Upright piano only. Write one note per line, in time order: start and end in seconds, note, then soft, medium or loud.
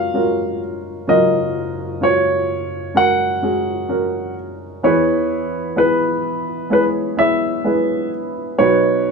0.00 1.04 F#1 soft
0.00 1.05 F#2 soft
0.00 0.14 C#4 medium
0.00 0.14 F4 medium
0.00 0.15 F#4 medium
0.00 0.12 A#4 medium
0.00 2.02 C#5 medium
0.14 1.03 C#4 medium
0.14 1.03 F4 medium
0.14 1.04 F#4 soft
0.14 1.04 A#4 medium
1.07 4.79 F#1 soft
1.07 4.79 F#2 soft
1.07 1.97 C#4 medium
1.07 1.98 F4 medium
1.07 1.98 F#4 medium
1.07 1.98 A#4 medium
2.01 2.91 C#4 medium
2.01 2.91 F4 soft
2.01 2.91 F#4 soft
2.01 2.91 C#5 medium
2.94 3.40 C#4 medium
2.94 3.40 F#4 soft
2.94 3.40 A#4 medium
3.42 3.87 C#4 medium
3.42 3.88 F#4 medium
3.42 3.88 G#4 medium
3.89 4.78 C#4 medium
3.89 4.79 F#4 medium
3.89 4.79 A#4 medium
4.83 8.55 E2 soft
4.83 8.55 E3 soft
4.83 5.72 B3 medium
4.83 5.73 E4 medium
4.83 5.73 G#4 medium
4.83 5.73 B4 medium
5.76 6.66 B3 medium
5.76 6.66 E4 medium
5.76 6.66 G#4 soft
5.76 6.66 B4 medium
6.70 7.15 B3 medium
6.70 7.15 E4 medium
6.70 7.16 G#4 medium
6.70 7.16 C#5 medium
7.17 7.62 B3 medium
7.17 7.62 E4 medium
7.17 7.62 G#4 soft
7.17 7.63 C#5 medium
7.64 8.54 B3 medium
7.64 8.54 E4 medium
7.64 8.54 G#4 medium
7.64 8.54 B4 medium
8.58 9.11 B1 soft
8.58 9.11 B2 soft
8.58 9.11 B3 medium
8.58 9.11 D#4 medium
8.58 9.11 F#4 medium
8.58 9.11 B4 medium